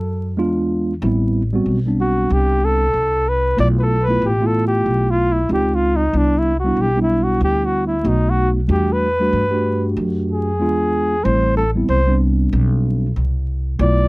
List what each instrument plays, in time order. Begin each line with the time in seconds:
Already playing: upright bass F#2, flugelhorn A4
0.37 upright bass E2, tine electric piano G#3 B3 D4 F4
1.02 upright bass A1, tine electric piano G3 B3 C4 E4
1.53 tine electric piano G3 B3 C4 F#4
1.66 upright bass B1
1.86 tine electric piano G3 B3 C4 D4
2.01 flugelhorn F#4
2.30 upright bass C2, flugelhorn G4
2.65 flugelhorn A4
2.94 upright bass C2
3.29 flugelhorn B4
3.57 upright bass B1, tine electric piano A3 B3 E4 F4, flugelhorn D5
3.79 flugelhorn A4 B4
4.03 flugelhorn B4
4.08 tine electric piano A3 B3 E4 F4
4.22 upright bass A1, flugelhorn G4
4.40 tine electric piano A3 B3 E4 F4
4.46 flugelhorn A4
4.68 flugelhorn G4
4.86 upright bass B1
5.10 flugelhorn F4
5.32 flugelhorn E4
5.49 upright bass C#2, tine electric piano G#3 C4 D#4 F4, flugelhorn G4
5.75 flugelhorn F4
5.96 flugelhorn D#4
6.13 upright bass C2, tine electric piano G3 B3 D4 E4
6.17 flugelhorn D4
6.38 flugelhorn E4
6.59 flugelhorn F#4
6.64 tine electric piano G3 B3 D4 E4
6.76 upright bass B1
6.81 flugelhorn G4
6.96 tine electric piano G3 B3 D4 E4
7.01 flugelhorn E4
7.23 flugelhorn F#4
7.41 upright bass D2, flugelhorn G4
7.65 flugelhorn F#4
7.87 flugelhorn E4
8.03 upright bass B1, tine electric piano A3 B3 D#4 F#4
8.08 flugelhorn D#4
8.30 flugelhorn F#4
8.68 upright bass E2, tine electric piano G3 A3 D4 F#4, flugelhorn G4
8.92 flugelhorn B4
9.20 tine electric piano G3 A3 D4 F#4
9.33 upright bass G2
9.51 tine electric piano A3 D4 F#4 G4
9.97 upright bass F#2
10.31 flugelhorn G#4
10.59 upright bass E2, tine electric piano G#3 B3 D4 F4
11.23 upright bass A1, tine electric piano G3 A3 C4 E4, flugelhorn C5
11.57 flugelhorn A4
11.75 tine electric piano G3 B3 C4 E4
11.89 upright bass C2, flugelhorn C5
12.07 tine electric piano G3 B3 C4 D4
12.53 upright bass B1
13.16 upright bass C2
13.79 upright bass B1, tine electric piano A3 B3 E4 F4, flugelhorn D5